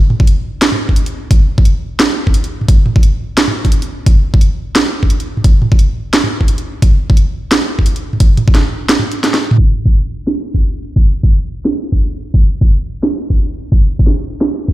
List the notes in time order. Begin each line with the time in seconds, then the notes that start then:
0.10 mid tom
0.20 kick
0.27 closed hi-hat
0.62 snare, closed hi-hat
0.72 mid tom
0.89 kick
0.96 closed hi-hat
1.06 closed hi-hat
1.31 kick, closed hi-hat
1.58 kick
1.65 closed hi-hat
2.00 snare, closed hi-hat
2.27 kick
2.34 closed hi-hat
2.44 closed hi-hat
2.61 mid tom
2.68 kick, closed hi-hat
2.86 mid tom
2.96 kick
3.03 closed hi-hat
3.37 snare, closed hi-hat
3.48 mid tom
3.65 kick, closed hi-hat
3.72 closed hi-hat
3.82 closed hi-hat
4.06 kick, closed hi-hat
4.34 kick
4.41 closed hi-hat
4.75 snare, closed hi-hat
5.03 kick
5.10 closed hi-hat
5.20 closed hi-hat
5.37 mid tom
5.44 kick, closed hi-hat
5.62 mid tom
5.72 kick
5.79 closed hi-hat
6.13 snare, closed hi-hat
6.24 mid tom
6.41 kick
6.48 closed hi-hat
6.58 closed hi-hat
6.82 kick, closed hi-hat
7.10 kick
7.17 closed hi-hat
7.51 snare, closed hi-hat
7.79 kick
7.86 closed hi-hat
7.96 closed hi-hat
8.13 mid tom
8.20 kick, closed hi-hat
8.37 closed hi-hat, mid tom
8.48 kick
8.55 snare, closed hi-hat
8.89 snare, closed hi-hat
8.99 mid tom
9.12 closed hi-hat
9.24 snare, closed hi-hat
9.34 snare, closed hi-hat
9.51 mid tom
9.58 kick
9.85 kick
10.27 snare
10.54 kick
10.96 kick
11.23 kick
11.65 snare
11.92 kick
12.34 kick
12.61 kick
13.03 snare
13.30 kick
13.72 kick
13.99 kick
14.07 snare
14.41 snare
14.68 kick